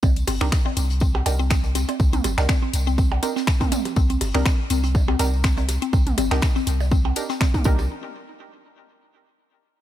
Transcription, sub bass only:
X:1
M:4/4
L:1/16
Q:"Swing 16ths" 1/4=122
K:Cm
V:1 name="Sub bass" clef=bass
C,,2 G,,, C,, z2 C,,4 C,,4- C,, z | C,,2 G,,, C,, z2 C,,4 z6 | C,,2 G,,, C,, z2 C,,4 C,,4- C,, z | C,,2 G,,, C,, z2 C,,4 z4 C,,2 |
z16 |]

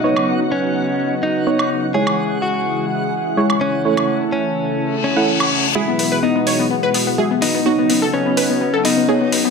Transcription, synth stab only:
X:1
M:4/4
L:1/16
Q:1/4=126
K:E
V:1 name="Synth stab"
[B,Dc]12 [B,Dc]4 | [G,Ec]12 [G,Ec]4 | [A,Ec]8- [A,Ec]3 [A,Ef] z4 | [G,Ff]12 [G,Fe]4 |
[B,Dc]12 [B,Dc]4 |]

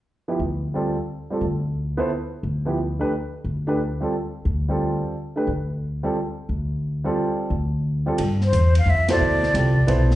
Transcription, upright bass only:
X:1
M:3/4
L:1/8
Q:"Swing" 1/4=177
K:Gmix
V:1 name="Upright bass" clef=bass
z2 D,,3 z | z2 D,,3 z | z2 D,,3 z | z2 D,,3 z |
z2 D,,3 z | z2 D,,3 z | z2 D,,3 z | z2 D,,3 z |
G,,2 E,,2 F,,2 | D,,2 C,,2 B,,,2 |]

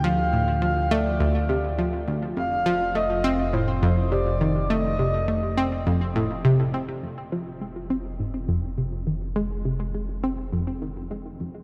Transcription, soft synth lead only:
X:1
M:4/4
L:1/8
Q:1/4=103
K:Fmix
V:1 name="Soft synth lead"
f2 f d3 z2 | f2 e2 c2 d2 | e4 z4 | [K:Fm] z8 |
z8 |]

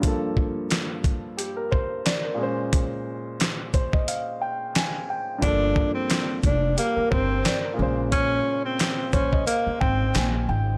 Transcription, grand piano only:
X:1
M:4/4
L:1/16
Q:"Swing 16ths" 1/4=89
K:Bblyd
V:1 name="Grand piano"
z8 G B c2 d B2 z | z6 c _e f2 g2 _a2 g2 | z8 G B c2 d B2 z | z6 c _e f2 g2 _a2 g2 |]
V:2 name="Grand piano" clef=bass
[G,,F,B,A]12- [G,,F,B,A]2 [B,,_A,_Dc]2- | [B,,_A,_Dc]12- [B,,A,Dc]2 z2 | [G,,F,B,A]12- [G,,F,B,A]2 [B,,_D,_A,c]2- | [B,,_D,_A,c]12- [B,,D,A,c]2 z2 |]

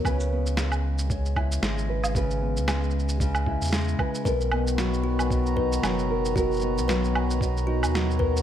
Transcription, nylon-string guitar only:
X:1
M:4/4
L:1/8
Q:"Swing 16ths" 1/4=114
K:B
V:1 name="Nylon-string guitar"
[C,B] B, G,2 C, E G, B | [C,B] B, G,2 C, E G, B | [B,,A] B, F,2 B,, D F, A | [B,,A] B, F,2 B,, D F, A |]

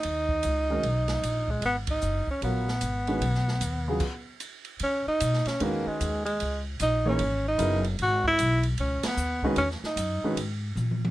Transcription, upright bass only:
X:1
M:4/4
L:1/8
Q:"Swing" 1/4=151
K:G#dor
V:1 name="Upright bass" clef=bass
D,,2 C,,2 B,,,2 A,,,2 | G,,,2 F,,, z A,,,2 G,,,2 | B,,,2 D,,2 z4 | [K:C#dor] C, z B,, z E,, z D,,2 |
C,,2 A,,,2 G,,,2 F,,,2 | G,,,2 B,,,2 C,, z D,,2 | E,, z F,, z G,,2 A,,2 |]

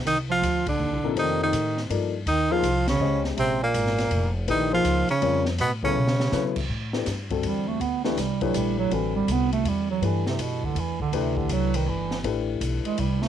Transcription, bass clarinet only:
X:1
M:3/4
L:1/8
Q:"Swing" 1/4=162
K:Eblyd
V:1 name="Bass clarinet" clef=bass
E, F,2 D,3 | E, E,3 z2 | E, F,2 _D,2 z | C, B,,4 z |
E, F,2 _D,2 z | =B,, ^C,4 z | [K:Dmix] z4 G, A, | B, A, G, F, G, F, |
E, G, B, A, G, F, | E, C, B,, D, E, D, | C, D, F, _E, =E,2 | z3 ^G, =G, A, |]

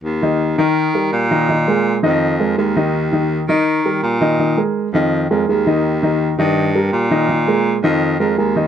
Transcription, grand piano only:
X:1
M:4/4
L:1/8
Q:1/4=166
K:Eb
V:1 name="Grand piano"
z [E,Ee]2 [E,Ee]2 [G,GB]2 [E,Ee] | [E,Ee] [A,AB]2 [E,Ee]2 [A,AB] [A,AB] [E,Ee]- | [E,Ee] [E,Ee]2 [E,Ee]2 [G,GB]2 [E,Ee] | [E,Ee] [A,AB]2 [E,Ee]2 [A,AB] [A,AB] [E,Ee]- |
[E,Ee] [E,Ee]2 [E,Ee]2 [G,GB]2 [E,Ee] | [E,Ee] [A,AB]2 [E,Ee]2 [A,AB] [A,AB] [E,Ee] |]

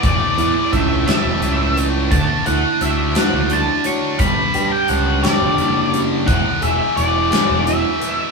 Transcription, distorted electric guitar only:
X:1
M:6/8
L:1/8
Q:3/8=58
K:Amix
V:1 name="Distorted electric guitar" clef=bass
[A,,E,A,]3 [A,,E,A,]3 | [D,A,D]3 [D,A,D]3 | [G,,D,G,]3 [G,,D,G,]3 | [E,,B,,E,]3 [E,,B,,E,]3 |]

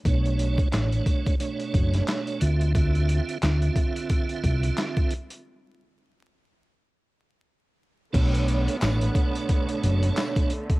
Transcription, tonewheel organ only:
X:1
M:4/4
L:1/8
Q:"Swing 16ths" 1/4=89
K:Bm
V:1 name="Tonewheel organ"
[B,,A,Dc]2 [B,,A,Dc]2 [B,,A,Dc]3 [D,=C=Fe] | [D,=C=Fe]2 [D,CFe]4- [D,CFe] z | z8 | [B,,A,Dc]2 [B,,A,Dc]4- [B,,A,Dc] z |]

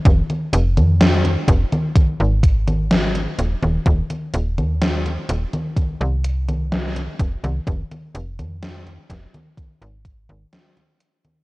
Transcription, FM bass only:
X:1
M:4/4
L:1/16
Q:1/4=63
K:Fdor
V:1 name="FM bass" clef=bass
F,,, z F,,, F,,3 F,,, z2 A,,,4- A,,, E,,, E,,, | E,,, z E,,, E,,3 E,,, z C,, C,,4- C,, F,,, C,, | F,,, z F,,, F,,3 F,,, z2 A,,,2 A,,, z4 |]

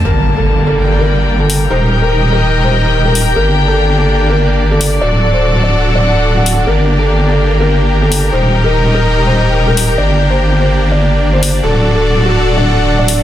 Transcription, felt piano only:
X:1
M:4/4
L:1/16
Q:"Swing 16ths" 1/4=145
K:Gm
V:1 name="Felt piano"
B2 z A2 z A2 z B3 z A2 z | c2 z B2 z B2 z c3 z B2 z | B2 z A2 z A2 z B3 z A2 z | d2 z c2 z d2 z d3 z ^f2 z |
B2 z A2 z A2 z B3 z A2 z | c2 z B2 z B2 z c3 z B2 z | d2 z c2 z c2 z d3 z c2 z | A2 z A2 z ^F2 z D3 z D2 z |]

